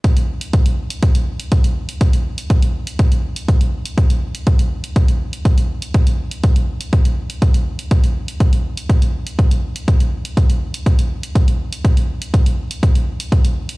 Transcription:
\new DrumStaff \with { instrumentName = "Drums" } \drummode { \time 4/4 \tempo 4 = 122 <hh bd>16 hh8 hh16 <hh bd>16 hh8 hh16 <hh bd>16 hh8 hh16 <hh bd>16 hh8 hh16 | <hh bd>16 hh8 hh16 <hh bd>16 hh8 hh16 <hh bd>16 hh8 hh16 <hh bd>16 hh8 hh16 | <hh bd>16 hh8 hh16 <hh bd>16 hh8 hh16 <hh bd>16 hh8 hh16 <hh bd>16 hh8 hh16 | <hh bd>16 hh8 hh16 <hh bd>16 hh8 hh16 <hh bd>16 hh8 hh16 <hh bd>16 hh8 hh16 |
<hh bd>16 hh8 hh16 <hh bd>16 hh8 hh16 <hh bd>16 hh8 hh16 <hh bd>16 hh8 hh16 | <hh bd>16 hh8 hh16 <hh bd>16 hh8 hh16 <hh bd>16 hh8 hh16 <hh bd>16 hh8 hh16 | <hh bd>16 hh8 hh16 <hh bd>16 hh8 hh16 <hh bd>16 hh8 hh16 <hh bd>16 hh8 hh16 | }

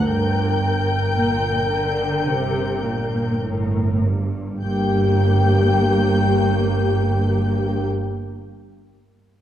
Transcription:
<<
  \new Staff \with { instrumentName = "Violin section" } { \time 4/4 \key g \minor \tempo 4 = 51 g'''2. r4 | g'''1 | }
  \new Staff \with { instrumentName = "Violin section" } { \time 4/4 \key g \minor g''2. r4 | g''1 | }
  \new Staff \with { instrumentName = "Viola section" } { \time 4/4 \key g \minor bes'2.~ bes'8 r8 | <bes g'>1 | }
  \new Staff \with { instrumentName = "Cello section" } { \clef bass \time 4/4 \key g \minor g,4 bes,8 d8 c8 bes,8 a,8 g,8 | g,1 | }
  \new Staff \with { instrumentName = "Double bass section" } { \clef bass \time 4/4 \key g \minor g,,4 g,,4 g,,4 g,,4 | g,,1 | }
>>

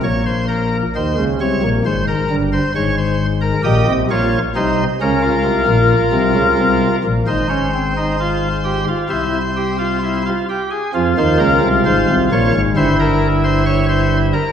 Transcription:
<<
  \new Staff \with { instrumentName = "Pipe organ" } { \time 4/4 \key f \minor \tempo 4 = 66 << { des''16 c''16 bes'8 c''8 des''8 c''16 bes'8 c''16 des''16 c''8 bes'16 | ees''8 des''8 c''8 bes'2~ bes'8 | c''2 c''4. r8 | r16 c''16 bes'8 c''8 des''8 c''16 bes'8 c''16 des''16 c''8 bes'16 | } \\ { r1 | g'8 f'8 ees'8 des'16 f'2~ f'16 | ees'16 des'16 c'16 ees'16 f'8 g'16 f'16 e'8 g'16 f'16 e'16 f'16 g'16 aes'16 | f'2 e'2 | } >> }
  \new Staff \with { instrumentName = "Pipe organ" } { \clef bass \time 4/4 \key f \minor <bes,, bes,>4 <ees, ees>16 <des, des>16 <c, c>16 <bes,, bes,>16 <aes,, aes,>8 <g,, g,>8 <aes,, aes,>4 | <bes,, bes,>16 <c, c>16 <bes,, bes,>8 <c, c>8 <des, des>8 <c, c>16 <bes,, bes,>8 <c, c>16 <des, des>16 <c, c>8 <bes,, bes,>16 | <aes,, aes,>2 <c, c>4. r8 | <f, f>16 <ees, ees>16 <des, des>16 <c, c>16 <aes,, aes,>16 <c, c>16 <bes,, bes,>16 <aes,, aes,>16 <g,, g,>2 | }
>>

